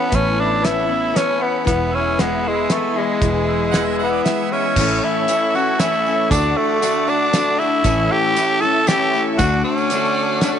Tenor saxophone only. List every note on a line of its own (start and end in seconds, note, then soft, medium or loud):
0.00 0.16 B3 medium
0.14 0.42 C#4 medium
0.40 0.66 D4 medium
0.65 1.18 E4 medium
1.16 1.43 C#4 medium
1.42 1.66 B3 medium
1.67 1.96 B3 medium
1.94 2.21 C#4 medium
2.20 2.49 B3 medium
2.48 2.73 G#3 medium
2.72 2.99 A3 medium
2.98 4.00 G#3 medium
4.03 4.53 B3 medium
4.52 5.05 C#4 medium
5.04 5.57 E4 loud
5.56 5.82 F#4 medium
5.80 6.30 E4 medium
6.31 6.58 D4 medium
6.57 7.10 A3 loud
7.09 7.60 D4 medium
7.59 8.13 E4 loud
8.12 8.62 G4 loud
8.61 8.89 A4 loud
8.88 9.23 G4 loud
9.38 9.62 F#4 loud
9.64 10.59 C#4 medium